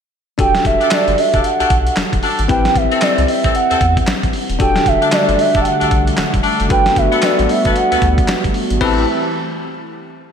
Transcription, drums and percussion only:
0.39 kick, closed hi-hat
0.55 snare, closed hi-hat
0.65 kick, closed hi-hat
0.81 closed hi-hat
0.91 snare, clap, closed hi-hat
1.08 closed hi-hat
1.18 open hi-hat
1.34 kick, closed hi-hat
1.44 closed hi-hat
1.60 closed hi-hat
1.70 kick, closed hi-hat
1.87 closed hi-hat
1.96 snare, clap, closed hi-hat
2.13 kick, closed hi-hat
2.23 open hi-hat
2.39 closed hi-hat
2.49 kick, closed hi-hat
2.65 snare, closed hi-hat
2.76 kick, closed hi-hat
2.92 closed hi-hat
3.01 snare, clap, closed hi-hat
3.18 closed hi-hat
3.28 open hi-hat
3.44 kick, closed hi-hat
3.55 closed hi-hat
3.71 closed hi-hat
3.81 kick, closed hi-hat
3.97 kick, closed hi-hat
4.07 snare, clap, closed hi-hat
4.23 kick, closed hi-hat
4.33 open hi-hat
4.50 closed hi-hat
4.60 kick, closed hi-hat
4.76 snare, closed hi-hat
4.86 kick, closed hi-hat
5.02 closed hi-hat
5.12 snare, clap, closed hi-hat
5.29 closed hi-hat
5.39 open hi-hat
5.55 kick, closed hi-hat
5.65 closed hi-hat
5.81 closed hi-hat
5.91 kick, closed hi-hat
6.07 closed hi-hat
6.17 snare, clap, closed hi-hat
6.34 kick, closed hi-hat
6.44 open hi-hat
6.60 closed hi-hat
6.70 kick, closed hi-hat
6.86 snare, closed hi-hat
6.96 kick, closed hi-hat
7.12 closed hi-hat
7.22 snare, clap, closed hi-hat
7.39 closed hi-hat
7.49 open hi-hat
7.65 kick, closed hi-hat
7.76 closed hi-hat
7.92 closed hi-hat
8.02 kick, closed hi-hat
8.18 kick, closed hi-hat
8.28 snare, clap, closed hi-hat
8.44 kick, closed hi-hat
8.54 open hi-hat
8.70 closed hi-hat
8.81 kick, crash

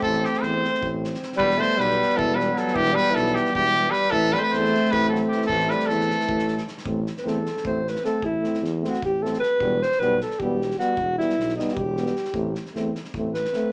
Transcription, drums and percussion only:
0.02 kick
0.13 snare
0.25 snare
0.34 snare
0.43 snare
0.64 snare
0.74 snare
0.83 kick
1.04 snare
1.14 snare
1.23 snare
1.32 snare
1.40 kick
1.50 snare
1.62 snare
1.80 snare
1.90 snare
2.02 snare
2.10 snare
2.19 kick
2.40 snare
2.56 snare
2.68 snare
2.76 kick
2.85 snare
2.98 snare
3.16 snare
3.26 snare
3.36 snare
3.45 snare
3.55 kick
3.75 snare
3.93 snare
4.03 snare
4.12 kick
4.23 snare
4.34 snare
4.54 snare
4.65 snare
4.75 snare
4.85 snare
4.93 kick
5.15 snare
5.32 snare
5.42 snare
5.49 kick
5.60 snare
5.70 snare
5.80 snare
5.90 snare
6.00 snare
6.10 snare
6.20 snare
6.29 kick
6.39 snare
6.48 snare
6.58 snare
6.68 snare
6.78 snare
6.86 kick
7.06 snare
7.17 snare
7.28 snare
7.46 snare
7.57 snare
7.65 kick
7.87 snare
7.95 snare
8.05 snare
8.22 kick
8.44 snare
8.54 snare
8.65 snare
8.85 snare
8.94 snare
9.02 kick
9.25 snare
9.34 snare
9.43 snare
9.60 kick
9.83 snare
9.92 snare
10.01 snare
10.21 snare
10.31 snare
10.40 kick
10.62 snare
10.71 snare
10.80 snare
10.97 kick
11.20 snare
11.30 snare
11.40 snare
11.49 snare
11.59 snare
11.68 snare
11.77 kick
11.97 snare
12.06 snare
12.16 snare
12.25 snare
12.34 kick
12.55 snare
12.66 snare
12.75 snare
12.95 snare
13.05 snare
13.14 kick
13.35 snare
13.45 snare
13.53 snare

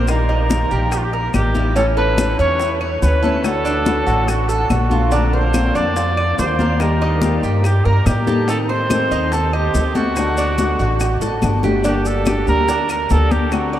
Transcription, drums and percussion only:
0.08 high bongo, high conga, claves, maracas
0.29 high bongo, high conga
0.50 high bongo, high conga, maracas
0.71 high conga, maracas
0.92 high bongo, high conga, claves, maracas
1.13 high bongo, high conga
1.34 high bongo, low bongo, high conga, claves, maracas
1.55 high bongo, high conga, maracas
1.76 high bongo, high conga, maracas
1.97 high bongo, high conga
2.18 high bongo, high conga, claves, maracas
2.40 high conga, maracas
2.60 high bongo, high conga, maracas
2.81 high bongo, high conga, claves
3.02 high bongo, low bongo, high conga, maracas
3.23 high bongo, high conga, maracas
3.44 high bongo, high conga, claves, maracas
3.65 high bongo, high conga, maracas
3.86 high bongo, high conga, maracas
4.08 high conga, maracas
4.28 high bongo, high conga, claves, maracas
4.49 high bongo, high conga, maracas
4.70 high bongo, low bongo, high conga, claves, maracas
4.91 high bongo, high conga, maracas
5.11 high bongo, high conga, maracas
5.33 high bongo, high conga
5.54 high bongo, high conga, claves, maracas
5.75 high conga, maracas
5.96 high bongo, high conga, maracas
6.17 high bongo, high conga, claves
6.39 high bongo, low bongo, high conga, maracas
6.59 high bongo, high conga, maracas
6.80 high bongo, high conga, claves, maracas
7.01 high bongo, high conga
7.22 high bongo, high conga, maracas
7.43 high conga, maracas
7.64 high bongo, high conga, claves, maracas
7.85 high bongo, high conga
8.06 high bongo, low bongo, high conga, claves, maracas
8.27 high bongo, high conga, maracas
8.48 high bongo, high conga, maracas
8.69 high bongo, high conga
8.90 high bongo, high conga, claves, maracas
9.12 high conga, maracas
9.32 high bongo, high conga, maracas
9.53 high bongo, high conga, claves
9.74 high bongo, low bongo, high conga, maracas
9.95 high bongo, high conga, maracas
10.16 high bongo, high conga, claves, maracas
10.37 high bongo, high conga, maracas
10.58 high bongo, high conga, maracas
10.79 high conga, maracas
11.00 high bongo, high conga, claves, maracas
11.21 high bongo, high conga, maracas
11.42 low bongo, high conga, claves, maracas
11.63 low bongo, high conga, maracas
11.84 high bongo, high conga, maracas
12.05 high bongo, high conga, maracas
12.26 high bongo, high conga, claves, maracas
12.47 high conga, maracas
12.68 high bongo, high conga, maracas
12.89 high bongo, high conga, claves, maracas
13.10 high bongo, low bongo, high conga, maracas
13.31 high bongo, high conga, maracas
13.52 high bongo, high conga, claves, maracas
13.73 high bongo, high conga

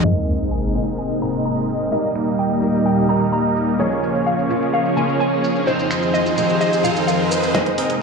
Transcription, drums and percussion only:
0.05 shaker
0.28 shaker
0.40 shaker
0.52 shaker
0.64 shaker
0.75 shaker
0.87 shaker
0.99 shaker
1.10 shaker
1.22 shaker
1.34 shaker
1.46 shaker
1.69 shaker
1.81 shaker
1.92 shaker
2.04 shaker
2.16 finger snap, shaker
2.28 shaker
2.39 shaker
2.51 shaker
2.63 shaker
2.74 shaker
2.86 shaker
2.98 shaker
3.10 shaker
3.21 shaker
3.33 shaker
3.57 shaker
3.68 shaker
3.80 shaker
3.92 shaker
4.03 shaker
4.15 shaker
4.27 shaker
4.39 shaker
4.50 shaker
4.62 shaker
4.74 shaker
4.86 shaker
4.97 shaker
5.09 shaker
5.21 shaker
5.44 shaker
5.56 shaker
5.68 shaker
5.79 shaker
5.91 finger snap, shaker
6.03 shaker
6.14 shaker
6.26 shaker
6.38 shaker
6.49 shaker
6.61 shaker
6.73 shaker
6.85 shaker
6.96 shaker
7.08 shaker
7.31 shaker
7.43 shaker
7.55 kick, snare, closed hi-hat
7.66 closed hi-hat
7.78 open hi-hat
7.90 closed hi-hat

